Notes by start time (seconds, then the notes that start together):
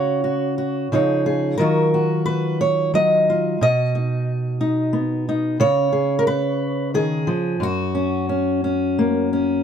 Already playing: C#3 F#4 C#5
0.24 F#4
0.58 F#4
0.92 C#3 F3 D#4 G#4 C#5
1.26 G#4
1.58 D#3 F#3 F4 F#4 A#4
1.94 F#4
2.26 B4
2.61 C#5
2.94 F#3 D#5
3.30 F4
3.61 B2 D#5
3.95 D#4
4.61 D#4
4.93 B3
5.29 D#4
5.60 C#3 C#5
5.93 G#4
6.19 A#4
6.27 B4
6.94 D#3 G#4
7.27 F3
7.60 F#2 F#4
7.95 C#4
8.29 C#4
8.64 C#4
8.99 A#3
9.33 C#4